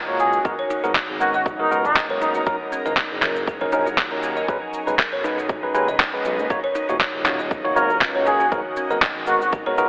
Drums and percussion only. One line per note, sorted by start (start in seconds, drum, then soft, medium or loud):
0.19 cabasa medium
0.33 cabasa medium
0.45 kick loud
0.45 cabasa soft
0.71 cabasa medium
0.84 cabasa medium
0.95 kick loud
0.95 clap loud
0.95 cabasa soft
1.21 cabasa loud
1.34 cabasa medium
1.46 kick loud
1.46 mid tom medium
1.46 cabasa soft
1.72 cabasa loud
1.85 mid tom medium
1.85 cabasa medium
1.96 kick loud
1.96 clap loud
1.96 cabasa soft
2.22 cabasa loud
2.34 cabasa medium
2.46 kick loud
2.46 cabasa soft
2.73 cabasa loud
2.86 cabasa medium
2.97 kick loud
2.97 clap loud
2.97 cabasa soft
3.22 clap medium
3.22 mid tom medium
3.22 cabasa loud
3.36 cabasa medium
3.47 kick loud
3.47 cabasa soft
3.62 mid tom medium
3.72 cabasa loud
3.87 cabasa medium
3.98 kick loud
3.98 clap loud
3.98 cabasa soft
4.23 cabasa loud
4.37 cabasa medium
4.48 kick loud
4.48 cabasa soft
4.74 cabasa medium
4.88 cabasa medium
4.99 kick loud
4.99 clap loud
4.99 cabasa soft
5.25 cabasa loud
5.39 cabasa medium
5.49 kick loud
5.49 mid tom medium
5.49 cabasa soft
5.75 cabasa medium
5.88 mid tom medium
5.88 cabasa medium
6.00 kick loud
6.00 clap loud
6.00 cabasa soft
6.25 cabasa loud
6.39 cabasa medium
6.50 kick loud
6.50 cabasa soft
6.75 cabasa loud
6.89 cabasa soft
7.01 kick loud
7.01 clap loud
7.01 cabasa soft
7.26 clap medium
7.26 mid tom medium
7.26 cabasa medium
7.40 cabasa medium
7.51 kick loud
7.51 cabasa soft
7.65 mid tom medium
7.77 cabasa loud
7.90 cabasa soft
8.01 kick loud
8.01 clap loud
8.01 cabasa soft
8.26 cabasa loud
8.40 cabasa soft
8.52 kick loud
8.52 cabasa soft
8.77 cabasa medium
8.91 cabasa medium
9.02 kick loud
9.02 clap loud
9.02 cabasa soft
9.27 cabasa medium
9.42 cabasa soft
9.52 kick loud
9.52 mid tom medium
9.52 cabasa soft
9.78 cabasa medium